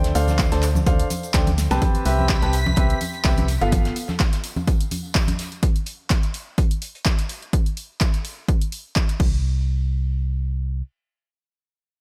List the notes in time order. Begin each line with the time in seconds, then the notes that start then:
Already playing: D2 D4 A4 C5 G5
0.03 snare, closed hi-hat, tambourine
0.15 D2 D4 A4 C5 F5, closed hi-hat, open hi-hat, tambourine, cabasa
0.28 snare, closed hi-hat, tambourine, high conga, cabasa
0.39 kick, snare, clap, closed hi-hat, tambourine, cabasa
0.52 D2 D4 A4 C5 A5, snare, closed hi-hat, tambourine
0.63 clap, closed hi-hat, open hi-hat, tambourine, cabasa
0.75 tambourine, high conga, cabasa
0.87 D2 D4 A4 C5 F5, kick, closed hi-hat, tambourine, cabasa
0.99 closed hi-hat, tambourine
1.10 closed hi-hat, open hi-hat, tambourine, high conga, cabasa
1.23 closed hi-hat, tambourine, cabasa
1.33 D2 D4 A4 C5 G5, kick, snare, clap, closed hi-hat, tambourine, cabasa
1.47 closed hi-hat, tambourine, high conga
1.58 snare, closed hi-hat, open hi-hat, tambourine, cabasa
1.71 C2 C4 G4 B4 A5, snare, closed hi-hat, tambourine, cabasa
1.82 B6, kick, closed hi-hat, tambourine, high conga
1.95 closed hi-hat, tambourine
2.05 C2 C4 G4 B4 E5, closed hi-hat, open hi-hat, tambourine
2.18 tambourine, high conga
2.29 kick, snare, clap, closed hi-hat, tambourine
2.42 C2 C4 G4 B4 A5, closed hi-hat, tambourine
2.53 closed hi-hat, open hi-hat, tambourine
2.66 tambourine, high conga
2.76 C2 C4 G4 B4 E5, kick, closed hi-hat, tambourine
2.90 closed hi-hat, tambourine
3.01 closed hi-hat, open hi-hat, tambourine, high conga
3.13 closed hi-hat, tambourine
3.25 C2 C4 G4 B4 E5, kick, snare, clap, closed hi-hat, tambourine
3.38 closed hi-hat, tambourine, high conga
3.48 closed hi-hat, open hi-hat, tambourine
3.61 G1 B3 F4 A4 F5, closed hi-hat, tambourine
3.72 kick, closed hi-hat, tambourine, high conga
3.85 snare, closed hi-hat, tambourine
3.96 closed hi-hat, open hi-hat, tambourine
4.08 snare, tambourine, high conga
4.19 kick, snare, clap, closed hi-hat, tambourine
4.33 snare, closed hi-hat, tambourine
4.44 closed hi-hat, open hi-hat, tambourine
4.56 tambourine, high conga
4.68 kick, closed hi-hat, tambourine
4.81 closed hi-hat, tambourine
4.91 closed hi-hat, open hi-hat, tambourine, high conga
5.04 tambourine
5.15 kick, snare, clap, closed hi-hat, tambourine
5.28 closed hi-hat, tambourine, high conga
5.39 snare, closed hi-hat, open hi-hat, tambourine
5.52 closed hi-hat, tambourine
5.63 kick, closed hi-hat
5.76 closed hi-hat
5.86 closed hi-hat, open hi-hat
6.10 kick, snare, clap, closed hi-hat
6.23 closed hi-hat
6.34 closed hi-hat, open hi-hat
6.58 kick, closed hi-hat
6.71 closed hi-hat
6.82 closed hi-hat, open hi-hat
6.95 closed hi-hat
7.05 kick, snare, clap, closed hi-hat
7.19 closed hi-hat
7.29 closed hi-hat, open hi-hat
7.42 closed hi-hat
7.53 kick, closed hi-hat
7.66 closed hi-hat
7.77 open hi-hat
8.01 kick, clap, closed hi-hat
8.14 closed hi-hat
8.25 open hi-hat
8.48 kick, closed hi-hat
8.61 closed hi-hat
8.72 open hi-hat
8.96 kick, clap, closed hi-hat
9.09 closed hi-hat
9.20 C2, kick, crash